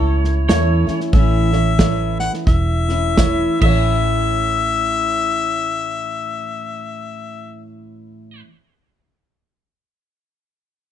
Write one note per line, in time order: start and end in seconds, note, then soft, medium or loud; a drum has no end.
0.00 0.48 C#2 medium
0.00 0.49 A3 soft
0.00 0.50 C#4 soft
0.00 0.49 E4 medium
0.00 0.49 A4 loud
0.00 0.47 C#5 loud
0.24 snare soft
0.48 0.85 E2 medium
0.48 0.87 E3 medium
0.48 0.88 A3 medium
0.48 0.87 C#4 medium
0.48 0.94 E4 medium
0.48 0.85 E4 medium
0.48 0.94 A4 medium
0.48 0.99 C#5 medium
0.48 0.94 C#5 loud
0.48 snare loud
0.48 hi-hat pedal medium
0.87 1.13 A3 soft
0.87 1.13 C#4 medium
0.87 1.13 E4 medium
0.87 muted fingered electric bass stroke soft
0.87 snare soft
1.00 snare soft
1.12 2.28 A1 medium
1.12 1.52 A2 medium
1.12 1.53 E3 medium
1.12 1.53 A3 medium
1.12 1.52 C#4 medium
1.12 1.50 E4 medium
1.12 2.16 E5 medium
1.12 kick loud
1.12 snare soft
1.51 1.78 A3 soft
1.51 1.79 C#4 soft
1.51 1.69 E4 medium
1.51 1.79 E4 medium
1.51 1.69 A4 medium
1.51 1.69 C#5 medium
1.51 snare soft
1.78 2.89 E3 medium
1.78 2.90 A3 medium
1.78 2.89 C#4 medium
1.78 2.26 E4 medium
1.78 2.87 E4 medium
1.78 2.27 A4 medium
1.78 2.27 C#5 medium
1.78 kick medium
1.78 snare loud
1.78 hi-hat pedal medium
2.19 2.32 F#5 medium
2.19 snare soft
2.33 snare soft
2.47 3.46 E1 medium
2.47 3.58 E5 medium
2.47 kick loud
2.47 snare soft
2.88 3.17 A3 soft
2.88 3.18 C#4 medium
2.88 3.17 E4 medium
2.88 snare soft
3.17 3.61 E3 medium
3.17 3.62 A3 medium
3.17 3.63 C#4 medium
3.17 3.58 E4 medium
3.17 3.63 E4 medium
3.17 3.61 A4 medium
3.17 3.62 C#5 medium
3.17 kick medium
3.17 snare loud
3.17 hi-hat pedal medium
3.59 8.40 A1 medium
3.59 8.41 A2 medium
3.59 8.45 E3 medium
3.59 8.38 E4 medium
3.59 8.41 A4 medium
3.59 7.71 E5 loud
3.59 8.41 E5 medium
3.59 kick loud
3.59 crash medium
3.65 8.47 A3 medium
3.65 8.48 C#4 medium
3.65 8.43 C#5 medium
3.70 8.49 E4 medium